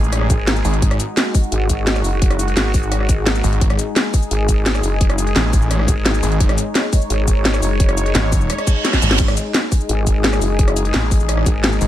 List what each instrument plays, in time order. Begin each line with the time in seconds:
Already playing: detuned saw bass A1, analog synth pad G#3 D#4 G#4
0.04 cabasa
0.13 cross-stick, closed hi-hat
0.21 cross-stick
0.30 wobble bass G#1, kick, closed hi-hat, cabasa
0.47 snare, closed hi-hat
0.56 cabasa
0.65 detuned saw bass G#1, open hi-hat, cabasa
0.74 closed hi-hat
0.82 detuned saw bass G#1, analog synth pad F#4, kick, closed hi-hat
0.91 cross-stick, closed hi-hat
1.00 closed hi-hat, cabasa
1.17 snare, closed hi-hat
1.35 kick, open hi-hat, cabasa
1.43 cabasa
1.52 wobble bass G#1, closed hi-hat
1.70 kick, closed hi-hat, cabasa
1.87 snare, closed hi-hat
1.96 cross-stick, cabasa
2.04 wobble bass F#1, open hi-hat, cabasa
2.22 kick, closed hi-hat
2.31 cross-stick, closed hi-hat
2.39 closed hi-hat, cabasa
2.48 closed hi-hat
2.57 wobble bass G#1, snare, closed hi-hat
2.74 kick, open hi-hat, cabasa
2.83 cabasa
2.92 cross-stick, closed hi-hat
3.00 cross-stick
3.09 kick, closed hi-hat, cabasa
3.27 snare, closed hi-hat
3.35 cabasa
3.44 detuned saw bass G#1, open hi-hat, cabasa
3.53 closed hi-hat
3.61 detuned saw bass G#1, analog synth pad G#4, kick, closed hi-hat
3.70 cross-stick, closed hi-hat
3.79 closed hi-hat, cabasa
3.96 snare, closed hi-hat
4.14 kick, open hi-hat, cabasa
4.22 cabasa
4.31 wobble bass G#1, closed hi-hat
4.49 kick, closed hi-hat, cabasa
4.66 snare, closed hi-hat
4.75 cross-stick, cabasa
4.83 wobble bass F#1, open hi-hat, cabasa
5.01 kick, closed hi-hat
5.10 cross-stick, closed hi-hat
5.18 closed hi-hat, cabasa
5.27 closed hi-hat
5.36 detuned saw bass A1, snare, closed hi-hat
5.53 kick, open hi-hat, cabasa
5.62 cabasa
5.71 cross-stick, closed hi-hat
5.79 cross-stick
5.88 wobble bass G#1, kick, closed hi-hat, cabasa
6.06 snare, closed hi-hat
6.14 cabasa
6.23 detuned saw bass G#1, open hi-hat, cabasa
6.32 closed hi-hat
6.40 detuned saw bass G#1, analog synth pad C#5, kick, closed hi-hat
6.49 cross-stick, closed hi-hat
6.58 closed hi-hat, cabasa
6.75 snare, closed hi-hat
6.93 kick, open hi-hat, cabasa
7.02 cabasa
7.10 wobble bass G#1, closed hi-hat
7.28 kick, closed hi-hat, cabasa
7.45 snare, closed hi-hat
7.54 cross-stick, cabasa
7.63 wobble bass F#1, open hi-hat, cabasa
7.80 kick, closed hi-hat
7.89 cross-stick, closed hi-hat
7.97 closed hi-hat, cabasa
8.06 closed hi-hat
8.15 detuned saw bass G#1, snare, closed hi-hat
8.32 kick, open hi-hat, cabasa
8.41 cabasa
8.50 cross-stick, closed hi-hat, reverse cymbal
8.58 cross-stick, closed hi-hat
8.67 kick, closed hi-hat, cabasa
8.85 snare, closed hi-hat
8.93 kick, snare, cabasa
9.02 detuned saw bass G#1, open hi-hat, cabasa
9.11 snare, closed hi-hat
9.20 detuned saw bass G#1, analog synth pad G#4, kick, closed hi-hat, crash
9.28 cross-stick, closed hi-hat
9.37 closed hi-hat, cabasa
9.54 snare, closed hi-hat
9.72 kick, open hi-hat, cabasa
9.81 cabasa
9.89 wobble bass G#1, closed hi-hat
10.07 kick, closed hi-hat, cabasa
10.24 snare, closed hi-hat
10.33 cross-stick, cabasa
10.42 wobble bass F#1, open hi-hat, cabasa
10.59 kick, closed hi-hat
10.68 cross-stick, closed hi-hat
10.77 closed hi-hat, cabasa
10.85 closed hi-hat
10.94 detuned saw bass A1, snare, closed hi-hat
11.11 kick, open hi-hat, cabasa
11.20 cabasa
11.29 cross-stick, closed hi-hat
11.38 cross-stick
11.46 wobble bass G#1, kick, closed hi-hat, cabasa
11.64 snare, closed hi-hat
11.72 cabasa
11.81 detuned saw bass G#1, open hi-hat, cabasa